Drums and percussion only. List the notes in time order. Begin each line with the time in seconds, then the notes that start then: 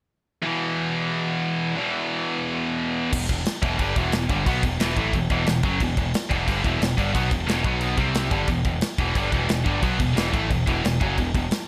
3.13 kick, crash
3.29 kick, crash
3.46 snare, crash
3.63 kick, crash
3.79 kick, crash
3.96 kick, crash
4.12 snare, crash
4.29 kick, crash
4.46 kick, crash
4.63 kick, crash
4.80 snare, crash
4.97 kick, crash
5.13 kick, crash
5.30 kick, crash
5.47 snare, crash
5.63 kick, crash
5.80 kick, crash
5.97 kick, crash
6.14 snare, crash
6.31 kick, crash
6.48 kick, crash
6.64 kick, crash
6.82 snare, crash
6.98 kick, crash
7.15 kick, crash
7.31 kick, crash
7.49 snare, crash
7.64 kick, crash
7.81 crash
7.98 kick, crash
8.15 snare, crash
8.31 kick, crash
8.48 kick, crash
8.65 kick, crash
8.81 snare, crash
8.98 kick, crash
9.15 kick, crash
9.32 kick, crash
9.49 snare, crash
9.66 kick, crash
9.82 kick, crash
10.00 kick, crash
10.17 snare, crash
10.34 kick, crash
10.51 kick, crash
10.67 kick, crash
10.85 snare, crash
11.01 kick, crash
11.18 kick, crash
11.35 kick, crash
11.51 snare, crash